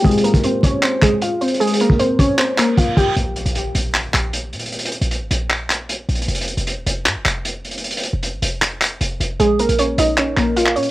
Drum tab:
HH |x-x-x-x--x--x-----x-----x-----x-----x-----x-x-x-|x-x-x-x-----x-----x-----x-----x-----x-----x-----|x-----x--x--x-----x-----x-----x-----x-----x-x-x-|x-x-x-x--x--x-----x-----x-----x-----x-----x-x-x-|
CP |------------------------x-----x-----------------|------------------------x-----x-----------------|------------------------x-----x-----------------|------------------------x-----x-----------------|
BD |o--------o--------o-----------o-----------------|---------o--------o-----------------o-----o-----|------------------------------------------------|------------------------------------------------|

HH |x-x-x-x--x--x-----x-----x-----x-----x-----x-x-x-|x-x-x-x-----x-----x-----x-----x-----x-----x-----|x-----x--x--x-----x-----x-----x-----x-----x-x---|
CP |------------------------x-----x-----------------|------------------------x-----x-----------------|------------------------x-----x--------x--------|
BD |------------------------------------------------|------------------------------------------------|------------------------------------------------|